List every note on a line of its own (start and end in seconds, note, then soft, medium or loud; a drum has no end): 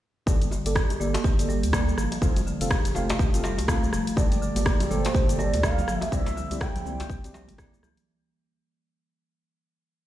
0.26 0.57 G1 medium
0.26 0.40 G3 medium
0.26 0.41 A#3 medium
0.26 0.41 G4 medium
0.26 0.41 A4 medium
0.26 0.41 D5 loud
0.26 kick loud
0.26 djembe tone medium
0.26 shaker medium
0.42 closed hi-hat soft
0.42 shaker soft
0.51 0.64 D3 medium
0.51 djembe tone medium
0.51 shaker soft
0.66 0.94 G1 loud
0.66 0.75 A#3 medium
0.66 0.75 G4 medium
0.66 0.75 A4 medium
0.66 0.75 D5 medium
0.66 closed hi-hat medium
0.66 shaker medium
0.76 0.89 G4 medium
0.76 kick loud
0.76 cross-stick medium
0.76 shaker soft
0.90 closed hi-hat soft
0.90 djembe tone medium
0.90 shaker soft
1.00 1.17 G1 loud
1.00 1.14 A#3 medium
1.00 1.14 G4 medium
1.00 1.14 A4 medium
1.00 1.14 D5 loud
1.00 shaker soft
1.14 closed hi-hat medium
1.14 djembe slap loud
1.14 djembe tone medium
1.14 shaker soft
1.24 1.65 G1 medium
1.24 1.37 G4 medium
1.24 kick loud
1.24 shaker soft
1.39 1.57 A#3 medium
1.39 1.57 G4 medium
1.39 1.57 A4 medium
1.39 1.57 D5 medium
1.39 closed hi-hat soft
1.39 shaker medium
1.48 1.62 G3 medium
1.48 djembe tone medium
1.48 shaker soft
1.63 1.92 D2 medium
1.63 closed hi-hat medium
1.63 shaker soft
1.73 1.87 A#3 medium
1.73 1.87 A#3 loud
1.73 1.87 G4 medium
1.73 1.87 A4 medium
1.73 1.87 D5 loud
1.73 kick loud
1.73 cross-stick loud
1.73 djembe tone medium
1.73 shaker medium
1.89 shaker soft
1.97 2.07 G1 medium
1.97 2.11 F3 medium
1.97 cross-stick medium
1.97 shaker medium
2.12 closed hi-hat medium
2.12 djembe tone medium
2.12 shaker soft
2.22 2.52 F1 medium
2.22 2.35 G3 medium
2.22 2.36 C4 medium
2.22 2.36 F4 medium
2.22 2.36 A4 medium
2.22 2.36 F5 loud
2.22 kick loud
2.22 shaker medium
2.36 closed hi-hat soft
2.36 djembe tone medium
2.36 shaker medium
2.46 2.59 D3 medium
2.46 shaker medium
2.61 2.89 F1 medium
2.61 2.70 C4 medium
2.61 2.71 F4 medium
2.61 2.70 A4 medium
2.61 2.71 F5 medium
2.61 closed hi-hat soft
2.61 shaker medium
2.71 2.84 G4 medium
2.71 kick loud
2.71 cross-stick loud
2.71 djembe tone medium
2.71 shaker soft
2.85 closed hi-hat soft
2.85 shaker medium
2.95 3.12 F1 loud
2.95 3.09 A3 medium
2.95 3.09 C4 medium
2.95 3.09 F4 medium
2.95 3.09 A4 medium
2.95 3.09 F5 loud
2.95 djembe tone medium
2.95 shaker medium
3.10 closed hi-hat soft
3.10 djembe slap loud
3.10 shaker medium
3.19 3.60 F1 medium
3.19 3.33 G4 medium
3.19 kick loud
3.19 shaker soft
3.34 3.52 C4 medium
3.34 3.52 F4 medium
3.34 3.52 A4 medium
3.34 3.52 F5 medium
3.34 closed hi-hat soft
3.34 djembe tone medium
3.34 shaker medium
3.44 3.57 G3 medium
3.44 djembe slap medium
3.44 shaker medium
3.58 3.87 C2 loud
3.58 closed hi-hat soft
3.58 djembe tone medium
3.58 shaker soft
3.68 3.82 A3 medium
3.68 3.82 C4 loud
3.68 3.82 F4 medium
3.68 3.82 A4 medium
3.68 3.82 F5 loud
3.68 kick loud
3.68 cross-stick loud
3.68 shaker medium
3.84 shaker medium
3.92 4.02 F1 medium
3.92 4.07 F3 medium
3.92 cross-stick medium
3.92 djembe tone medium
3.92 shaker medium
4.07 closed hi-hat soft
4.07 shaker medium
4.17 4.47 G1 medium
4.17 6.10 A#2 medium
4.17 4.30 G3 medium
4.17 4.31 A#3 loud
4.17 4.31 G4 medium
4.17 6.10 G4 medium
4.17 4.31 A4 medium
4.17 6.10 A4 medium
4.17 4.31 D5 loud
4.17 4.92 D5 loud
4.17 kick loud
4.17 djembe tone medium
4.17 shaker medium
4.32 closed hi-hat soft
4.32 muted conga medium
4.32 shaker medium
4.42 4.55 D3 medium
4.42 shaker medium
4.56 4.84 G1 loud
4.56 4.66 A#3 medium
4.56 4.66 G4 medium
4.56 4.66 A4 medium
4.56 4.66 D5 medium
4.56 closed hi-hat medium
4.56 high conga medium
4.56 djembe tone medium
4.56 shaker medium
4.66 4.79 G4 medium
4.66 kick loud
4.66 cross-stick loud
4.66 muted conga soft
4.66 shaker medium
4.80 closed hi-hat soft
4.80 djembe tone medium
4.80 low conga medium
4.80 shaker medium
4.90 5.07 G1 loud
4.90 5.04 A#3 medium
4.90 5.04 G4 medium
4.90 5.04 A4 medium
4.90 5.41 C5 medium
4.90 5.04 D5 loud
4.90 muted conga medium
4.90 high conga medium
4.90 shaker medium
5.05 closed hi-hat medium
5.05 djembe slap loud
5.05 shaker medium
5.15 5.55 G1 medium
5.15 5.28 G4 medium
5.15 kick loud
5.15 muted conga soft
5.15 djembe tone medium
5.15 high conga medium
5.15 shaker medium
5.29 5.47 A#3 medium
5.29 5.47 G4 medium
5.29 5.47 A4 medium
5.29 5.47 D5 loud
5.29 closed hi-hat soft
5.29 shaker medium
5.39 5.52 G3 loud
5.39 5.63 D5 medium
5.39 djembe tone medium
5.39 shaker medium
5.53 5.82 D2 loud
5.53 closed hi-hat medium
5.53 muted conga soft
5.53 high conga loud
5.53 shaker medium
5.63 5.78 A#3 loud
5.63 5.77 A#3 medium
5.63 5.78 G4 medium
5.63 5.78 A4 medium
5.63 5.78 D5 loud
5.63 5.97 F5 loud
5.63 kick loud
5.63 cross-stick loud
5.63 shaker medium
5.78 muted conga soft
5.78 djembe tone medium
5.78 low conga medium
5.78 shaker medium
5.88 5.97 G1 medium
5.88 6.02 F3 loud
5.88 cross-stick medium
5.88 low conga medium
5.88 shaker medium
5.97 6.09 E5 loud
5.97 djembe tone loud
6.02 closed hi-hat medium
6.02 muted conga soft
6.02 shaker medium
6.12 6.43 C2 medium
6.12 8.05 D3 medium
6.12 6.25 G3 medium
6.12 8.05 C4 medium
6.12 6.26 C4 loud
6.12 8.05 E4 medium
6.12 6.26 E4 medium
6.12 6.26 G4 medium
6.12 6.26 D5 loud
6.12 6.63 E5 loud
6.12 kick loud
6.12 shaker medium
6.26 closed hi-hat soft
6.26 djembe slap medium
6.26 muted conga soft
6.26 shaker medium
6.36 6.50 D3 medium
6.36 djembe tone medium
6.36 shaker medium
6.51 6.80 C2 loud
6.51 6.61 C4 medium
6.51 6.61 E4 medium
6.51 6.61 G4 medium
6.51 6.61 D5 medium
6.51 closed hi-hat medium
6.51 high conga medium
6.51 shaker medium
6.61 6.74 G4 medium
6.61 7.59 G5 loud
6.61 kick loud
6.61 cross-stick loud
6.61 muted conga soft
6.61 djembe tone medium
6.61 shaker medium
6.76 closed hi-hat soft
6.76 low conga medium
6.76 shaker medium
6.85 7.02 C2 loud
6.85 6.99 A#3 medium
6.85 7.00 C4 medium
6.85 6.99 E4 medium
6.85 6.99 G4 medium
6.85 7.00 D5 loud
6.85 muted conga soft
6.85 high conga medium
6.85 shaker medium
7.00 closed hi-hat medium
7.00 djembe slap medium
7.00 djembe tone medium
7.00 shaker medium
7.10 7.50 C2 medium
7.10 7.23 G4 medium
7.10 kick loud
7.10 muted conga soft
7.10 shaker medium
7.24 7.42 C4 medium
7.24 7.42 E4 medium
7.24 7.42 G4 medium
7.24 7.42 D5 loud
7.24 closed hi-hat soft
7.24 djembe tone loud
7.24 shaker loud
7.34 7.47 G3 medium
7.34 djembe slap medium
7.34 high conga medium
7.34 low conga medium
7.34 shaker medium
7.48 7.77 G1 loud
7.48 closed hi-hat medium
7.48 muted conga medium
7.48 high conga loud
7.48 shaker medium
7.58 7.72 A#3 loud
7.58 7.73 C4 loud
7.58 7.73 E4 medium
7.58 7.73 G4 medium
7.58 7.73 D5 loud
7.58 kick loud
7.58 cross-stick loud
7.58 djembe tone medium
7.58 shaker medium
7.73 muted conga soft
7.73 shaker medium
7.83 7.92 C2 loud
7.83 7.97 E3 loud
7.83 cross-stick medium
7.83 djembe tone medium
7.83 low conga medium
7.83 shaker loud
7.97 closed hi-hat medium
7.97 muted conga soft
7.97 shaker medium